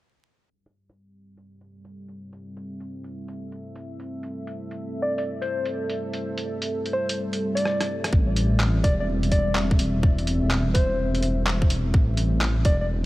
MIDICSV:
0, 0, Header, 1, 5, 480
1, 0, Start_track
1, 0, Key_signature, 0, "minor"
1, 0, Tempo, 476190
1, 509, Time_signature, 4, 2, 24, 8
1, 13160, End_track
2, 0, Start_track
2, 0, Title_t, "Soft synth lead"
2, 0, Program_c, 0, 80
2, 5064, Note_on_c, 0, 74, 84
2, 5167, Note_off_c, 0, 74, 0
2, 5220, Note_on_c, 0, 74, 68
2, 5276, Note_off_c, 0, 74, 0
2, 5458, Note_on_c, 0, 72, 84
2, 5710, Note_off_c, 0, 72, 0
2, 6988, Note_on_c, 0, 72, 89
2, 7244, Note_off_c, 0, 72, 0
2, 7613, Note_on_c, 0, 74, 90
2, 8183, Note_off_c, 0, 74, 0
2, 8907, Note_on_c, 0, 74, 83
2, 9008, Note_off_c, 0, 74, 0
2, 9076, Note_on_c, 0, 74, 72
2, 9124, Note_off_c, 0, 74, 0
2, 9390, Note_on_c, 0, 74, 90
2, 9645, Note_off_c, 0, 74, 0
2, 10826, Note_on_c, 0, 72, 94
2, 11514, Note_off_c, 0, 72, 0
2, 12758, Note_on_c, 0, 74, 84
2, 12854, Note_off_c, 0, 74, 0
2, 12914, Note_on_c, 0, 74, 71
2, 12964, Note_off_c, 0, 74, 0
2, 13160, End_track
3, 0, Start_track
3, 0, Title_t, "Analog synth pad"
3, 0, Program_c, 1, 89
3, 519, Note_on_c, 1, 55, 75
3, 902, Note_on_c, 1, 60, 74
3, 1432, Note_on_c, 1, 69, 68
3, 1771, Note_on_c, 1, 76, 86
3, 13160, Note_off_c, 1, 55, 0
3, 13160, Note_off_c, 1, 60, 0
3, 13160, Note_off_c, 1, 69, 0
3, 13160, Note_off_c, 1, 76, 0
3, 13160, End_track
4, 0, Start_track
4, 0, Title_t, "Detuned saw bass"
4, 0, Program_c, 2, 39
4, 8190, Note_on_c, 2, 33, 94
4, 8899, Note_off_c, 2, 33, 0
4, 8914, Note_on_c, 2, 28, 95
4, 10488, Note_off_c, 2, 28, 0
4, 10510, Note_on_c, 2, 28, 90
4, 10821, Note_off_c, 2, 28, 0
4, 10836, Note_on_c, 2, 28, 96
4, 12022, Note_off_c, 2, 28, 0
4, 12035, Note_on_c, 2, 33, 92
4, 12742, Note_off_c, 2, 33, 0
4, 12752, Note_on_c, 2, 28, 94
4, 13160, Note_off_c, 2, 28, 0
4, 13160, End_track
5, 0, Start_track
5, 0, Title_t, "Drums"
5, 666, Note_on_c, 9, 42, 38
5, 767, Note_off_c, 9, 42, 0
5, 902, Note_on_c, 9, 42, 52
5, 1003, Note_off_c, 9, 42, 0
5, 1385, Note_on_c, 9, 42, 50
5, 1486, Note_off_c, 9, 42, 0
5, 1624, Note_on_c, 9, 42, 29
5, 1724, Note_off_c, 9, 42, 0
5, 1861, Note_on_c, 9, 42, 49
5, 1962, Note_off_c, 9, 42, 0
5, 2100, Note_on_c, 9, 42, 43
5, 2201, Note_off_c, 9, 42, 0
5, 2345, Note_on_c, 9, 42, 52
5, 2446, Note_off_c, 9, 42, 0
5, 2588, Note_on_c, 9, 42, 39
5, 2689, Note_off_c, 9, 42, 0
5, 2826, Note_on_c, 9, 42, 52
5, 2926, Note_off_c, 9, 42, 0
5, 3067, Note_on_c, 9, 42, 28
5, 3168, Note_off_c, 9, 42, 0
5, 3309, Note_on_c, 9, 42, 51
5, 3409, Note_off_c, 9, 42, 0
5, 3549, Note_on_c, 9, 42, 29
5, 3650, Note_off_c, 9, 42, 0
5, 3785, Note_on_c, 9, 42, 51
5, 3886, Note_off_c, 9, 42, 0
5, 4029, Note_on_c, 9, 42, 42
5, 4130, Note_off_c, 9, 42, 0
5, 4264, Note_on_c, 9, 42, 53
5, 4365, Note_off_c, 9, 42, 0
5, 4509, Note_on_c, 9, 42, 41
5, 4609, Note_off_c, 9, 42, 0
5, 4749, Note_on_c, 9, 42, 53
5, 4849, Note_off_c, 9, 42, 0
5, 5223, Note_on_c, 9, 42, 53
5, 5324, Note_off_c, 9, 42, 0
5, 5464, Note_on_c, 9, 42, 30
5, 5565, Note_off_c, 9, 42, 0
5, 5700, Note_on_c, 9, 42, 53
5, 5801, Note_off_c, 9, 42, 0
5, 5942, Note_on_c, 9, 42, 43
5, 6043, Note_off_c, 9, 42, 0
5, 6184, Note_on_c, 9, 42, 52
5, 6285, Note_off_c, 9, 42, 0
5, 6427, Note_on_c, 9, 42, 39
5, 6528, Note_off_c, 9, 42, 0
5, 6671, Note_on_c, 9, 42, 51
5, 6772, Note_off_c, 9, 42, 0
5, 6911, Note_on_c, 9, 42, 28
5, 7012, Note_off_c, 9, 42, 0
5, 7150, Note_on_c, 9, 42, 51
5, 7251, Note_off_c, 9, 42, 0
5, 7389, Note_on_c, 9, 42, 29
5, 7490, Note_off_c, 9, 42, 0
5, 7629, Note_on_c, 9, 42, 49
5, 7716, Note_on_c, 9, 37, 57
5, 7730, Note_off_c, 9, 42, 0
5, 7816, Note_off_c, 9, 37, 0
5, 7868, Note_on_c, 9, 37, 57
5, 7868, Note_on_c, 9, 42, 40
5, 7969, Note_off_c, 9, 37, 0
5, 7969, Note_off_c, 9, 42, 0
5, 8107, Note_on_c, 9, 37, 77
5, 8107, Note_on_c, 9, 42, 54
5, 8192, Note_on_c, 9, 36, 112
5, 8208, Note_off_c, 9, 37, 0
5, 8208, Note_off_c, 9, 42, 0
5, 8292, Note_off_c, 9, 36, 0
5, 8432, Note_on_c, 9, 42, 55
5, 8533, Note_off_c, 9, 42, 0
5, 8667, Note_on_c, 9, 39, 95
5, 8767, Note_off_c, 9, 39, 0
5, 8912, Note_on_c, 9, 36, 97
5, 8912, Note_on_c, 9, 42, 53
5, 9013, Note_off_c, 9, 36, 0
5, 9013, Note_off_c, 9, 42, 0
5, 9306, Note_on_c, 9, 42, 31
5, 9391, Note_off_c, 9, 42, 0
5, 9391, Note_on_c, 9, 42, 54
5, 9392, Note_on_c, 9, 36, 58
5, 9491, Note_off_c, 9, 42, 0
5, 9493, Note_off_c, 9, 36, 0
5, 9628, Note_on_c, 9, 39, 98
5, 9729, Note_off_c, 9, 39, 0
5, 9789, Note_on_c, 9, 36, 97
5, 9869, Note_on_c, 9, 42, 56
5, 9890, Note_off_c, 9, 36, 0
5, 9970, Note_off_c, 9, 42, 0
5, 10112, Note_on_c, 9, 36, 120
5, 10213, Note_off_c, 9, 36, 0
5, 10266, Note_on_c, 9, 42, 30
5, 10354, Note_off_c, 9, 42, 0
5, 10354, Note_on_c, 9, 42, 54
5, 10455, Note_off_c, 9, 42, 0
5, 10590, Note_on_c, 9, 39, 100
5, 10691, Note_off_c, 9, 39, 0
5, 10832, Note_on_c, 9, 42, 55
5, 10835, Note_on_c, 9, 36, 102
5, 10933, Note_off_c, 9, 42, 0
5, 10935, Note_off_c, 9, 36, 0
5, 11235, Note_on_c, 9, 42, 31
5, 11314, Note_off_c, 9, 42, 0
5, 11314, Note_on_c, 9, 42, 55
5, 11415, Note_off_c, 9, 42, 0
5, 11556, Note_on_c, 9, 39, 105
5, 11657, Note_off_c, 9, 39, 0
5, 11711, Note_on_c, 9, 36, 103
5, 11795, Note_on_c, 9, 42, 54
5, 11811, Note_off_c, 9, 36, 0
5, 11896, Note_off_c, 9, 42, 0
5, 12034, Note_on_c, 9, 36, 124
5, 12135, Note_off_c, 9, 36, 0
5, 12271, Note_on_c, 9, 42, 55
5, 12371, Note_off_c, 9, 42, 0
5, 12509, Note_on_c, 9, 39, 102
5, 12610, Note_off_c, 9, 39, 0
5, 12749, Note_on_c, 9, 42, 51
5, 12752, Note_on_c, 9, 36, 104
5, 12850, Note_off_c, 9, 42, 0
5, 12853, Note_off_c, 9, 36, 0
5, 13160, End_track
0, 0, End_of_file